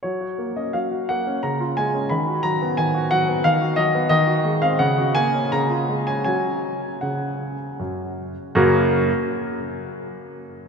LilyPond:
<<
  \new Staff \with { instrumentName = "Grand piano" } { \time 3/4 \key fis \major \tempo 4 = 84 cis''8. dis''16 eis''8 fis''8 ais''8 gis''8 | b''8 ais''8 gis''8 fis''8 eis''8 dis''8 | dis''8. eis''16 fis''8 gis''8 ais''8. gis''16 | gis''4 fis''4 r4 |
<fis, cis ais cis' fis' ais'>8 r2 r8 | }
  \new Staff \with { instrumentName = "Grand piano" } { \time 3/4 \key fis \major fis16 fis'16 ais16 cis'16 fis16 fis'16 ais16 cis'16 cis16 eis'16 gis16 cis'16 | dis16 fis'16 fis16 b16 dis16 fis'16 fis16 b16 dis16 fis'16 fis16 b16 | dis16 fis'16 gis16 bis16 cis16 fis'16 ais16 cis'16 cis16 eis'16 gis16 cis'16 | <fis cis' fis'>4 cis4 fis,4 |
r2. | }
>>